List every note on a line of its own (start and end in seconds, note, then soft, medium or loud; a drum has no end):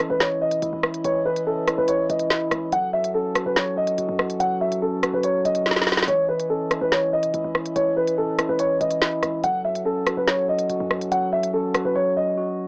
0.00 0.21 E3 medium
0.00 9.40 E3 medium
0.00 0.84 C#4 loud
0.00 9.40 C#4 medium
0.00 0.61 E4 medium
0.00 2.69 E4 medium
0.00 2.69 D#5 medium
0.10 0.53 C#2 loud
0.10 0.18 B4 medium
0.21 0.40 E3 medium
0.21 0.37 C#5 medium
0.21 snare loud
0.41 1.04 E3 medium
0.41 1.01 D#5 medium
0.52 0.62 C#3 loud
0.52 closed hi-hat medium
0.62 0.73 C#2 loud
0.62 1.67 E4 medium
0.62 closed hi-hat medium
0.73 1.03 C#2 loud
0.83 cross-stick loud
0.94 closed hi-hat medium
1.04 1.48 C#2 loud
1.04 1.24 E3 loud
1.04 1.21 C#5 medium
1.04 closed hi-hat medium
1.25 1.87 E3 medium
1.25 1.42 B4 medium
1.36 closed hi-hat medium
1.46 1.64 C#3 loud
1.46 2.52 C#4 medium
1.46 1.76 A4 medium
1.62 1.77 C#2 loud
1.67 2.30 E4 medium
1.67 cross-stick loud
1.67 closed hi-hat medium
1.78 2.08 C#2 loud
1.78 1.86 B4 medium
1.88 2.08 E3 medium
1.88 2.04 C#5 loud
1.88 closed hi-hat loud
2.09 2.30 C#2 loud
2.09 2.72 E3 medium
2.09 2.69 D#5 medium
2.09 closed hi-hat medium
2.19 closed hi-hat medium
2.30 2.73 E4 medium
2.30 snare loud
2.51 2.71 C#2 loud
2.51 cross-stick loud
2.51 closed hi-hat medium
2.72 2.95 F#1 loud
2.72 2.92 F#3 loud
2.72 6.05 F#4 medium
2.72 6.05 A4 medium
2.72 2.89 F#5 loud
2.72 closed hi-hat medium
2.93 3.13 F#2 loud
2.93 3.55 F#3 medium
2.93 3.09 E5 medium
3.04 closed hi-hat medium
3.14 4.19 C#4 medium
3.14 3.44 A4 medium
3.35 3.97 F#4 medium
3.35 cross-stick loud
3.35 closed hi-hat medium
3.46 3.68 F#1 loud
3.46 3.54 B4 medium
3.56 3.75 F#3 medium
3.56 3.72 C#5 medium
3.56 snare loud
3.67 3.84 C#2 loud
3.77 4.39 F#3 medium
3.77 4.36 D#5 medium
3.82 3.97 F#1 loud
3.87 closed hi-hat medium
3.98 4.08 F#1 loud
3.98 5.02 F#4 medium
3.98 closed hi-hat medium
4.09 4.39 F#2 loud
4.19 cross-stick loud
4.30 closed hi-hat medium
4.40 5.11 F#1 loud
4.40 4.59 F#3 loud
4.40 4.56 F#5 loud
4.40 closed hi-hat medium
4.61 5.23 F#3 medium
4.61 4.77 E5 medium
4.72 closed hi-hat medium
4.82 5.87 C#4 loud
4.82 5.12 A4 medium
5.03 5.65 F#4 loud
5.03 cross-stick loud
5.03 closed hi-hat medium
5.14 5.36 F#1 loud
5.14 5.22 B4 medium
5.23 5.44 F#3 medium
5.23 5.40 C#5 medium
5.23 closed hi-hat medium
5.35 5.44 F#2 loud
5.45 6.05 F#1 loud
5.45 6.08 F#3 medium
5.45 6.04 D#5 medium
5.45 closed hi-hat medium
5.55 closed hi-hat medium
5.66 6.08 F#4 loud
5.66 snare medium
5.71 snare medium
5.76 snare medium
5.82 snare medium
5.87 snare medium
5.87 open hi-hat medium
5.92 snare medium
5.97 snare loud
6.03 snare loud
6.08 6.62 C#2 loud
6.08 6.28 E3 medium
6.08 9.40 E4 medium
6.08 6.24 C#5 medium
6.08 9.40 D#5 medium
6.08 closed hi-hat medium
6.29 6.91 E3 medium
6.29 6.45 B4 medium
6.40 closed hi-hat medium
6.50 7.55 C#4 loud
6.50 6.79 A4 medium
6.60 6.80 G#2 loud
6.71 7.32 E4 medium
6.71 cross-stick loud
6.71 closed hi-hat medium
6.81 7.25 C#2 loud
6.81 6.90 B4 medium
6.92 7.11 E3 medium
6.92 7.08 C#5 medium
6.92 snare loud
7.13 7.75 E3 medium
7.13 7.72 D#5 medium
7.23 7.33 C#3 loud
7.23 closed hi-hat medium
7.34 7.44 C#2 loud
7.34 8.38 E4 medium
7.34 closed hi-hat medium
7.44 7.75 C#2 loud
7.55 cross-stick medium
7.66 closed hi-hat medium
7.76 8.19 C#2 loud
7.76 7.95 E3 loud
7.76 7.92 C#5 loud
7.76 closed hi-hat medium
7.97 8.58 E3 medium
7.97 8.13 B4 medium
8.08 closed hi-hat medium
8.18 8.35 C#3 loud
8.18 9.23 C#4 medium
8.18 8.47 A4 medium
8.34 8.48 C#2 loud
8.39 9.01 E4 medium
8.39 cross-stick loud
8.39 closed hi-hat medium
8.49 8.79 C#2 loud
8.49 8.57 B4 medium
8.59 8.79 E3 loud
8.59 8.76 C#5 loud
8.59 closed hi-hat loud
8.81 9.01 C#2 loud
8.81 9.44 E3 medium
8.81 9.40 D#5 medium
8.81 closed hi-hat medium
8.91 closed hi-hat medium
9.02 9.44 E4 loud
9.02 snare loud
9.23 9.43 C#2 loud
9.23 cross-stick medium
9.23 closed hi-hat medium
9.44 9.66 F#1 loud
9.44 12.62 E3 medium
9.44 9.63 F#3 loud
9.44 12.62 C#4 medium
9.44 12.62 F#4 medium
9.44 12.62 A4 medium
9.44 9.60 F#5 loud
9.44 closed hi-hat medium
9.64 9.85 F#2 loud
9.64 10.26 F#3 medium
9.64 9.81 E5 medium
9.75 closed hi-hat medium
9.85 10.90 C#4 loud
9.85 10.15 A4 medium
10.07 10.68 F#4 medium
10.07 cross-stick loud
10.07 closed hi-hat medium
10.17 10.40 F#1 loud
10.17 10.25 B4 medium
10.27 10.47 F#3 medium
10.27 10.43 C#5 medium
10.27 snare loud
10.38 10.55 C#2 loud
10.48 11.11 F#3 medium
10.48 11.08 D#5 medium
10.54 10.69 F#1 loud
10.59 closed hi-hat medium
10.69 10.80 F#1 loud
10.69 11.73 F#4 medium
10.69 closed hi-hat medium
10.80 11.10 F#2 loud
10.90 cross-stick medium
11.01 closed hi-hat medium
11.11 11.82 F#1 loud
11.11 11.31 F#3 loud
11.11 11.27 F#5 medium
11.11 closed hi-hat medium
11.32 11.94 F#3 medium
11.32 11.49 E5 medium
11.43 closed hi-hat medium
11.53 12.58 C#4 loud
11.53 11.83 A4 medium
11.74 12.36 F#4 loud
11.74 cross-stick loud
11.74 closed hi-hat medium
11.85 11.95 F#1 loud
11.85 11.93 B4 medium
11.95 12.15 F#3 medium
11.95 12.11 C#5 medium
12.16 12.68 F#3 medium
12.16 12.68 D#5 medium
12.38 12.68 F#4 loud